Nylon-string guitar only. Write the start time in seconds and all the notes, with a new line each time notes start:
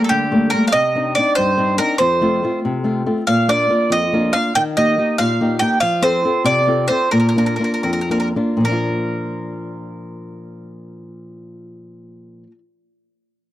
Already playing: G3 A3 A#3
0.11 D3
0.31 G3 A3 A#3
0.53 G3 A3 A#3
0.73 C3
0.95 C4 D4 D#4
1.17 C4 D4 D#4
1.38 G2
1.57 C4 D4 D#4
1.79 C4 D4 D#4
2.00 F2
2.21 A3 C4 F4
2.43 A3 C4 F4
2.65 C3
2.84 A3 C4 F4
3.06 A3 C4 F4
3.28 A#2
3.48 A#3 D4 F4
3.70 A#3 D4 F4
3.90 F2
4.13 A#3 D4 F4
4.35 A#3 D4 F4
4.56 D#3
4.77 A#3 D#4 G4
4.98 A#3 D#4 G4
5.19 A#2
5.41 A#3 D#4 G4
5.61 A#3 D#4 G4
5.82 F3
6.02 C4 F4 A4
6.25 C4 F4 A4
6.44 C3
6.67 C4 F4 A4
6.90 C4 F4 A4
7.13 A#2
7.36 A#3 D4 F4
7.59 A#3 D4 F4
7.84 F2
8.10 A#3 D4 F4
8.36 A#3 D4 F4
8.57 A#2 F3
8.64 A#3 D4
8.72 F4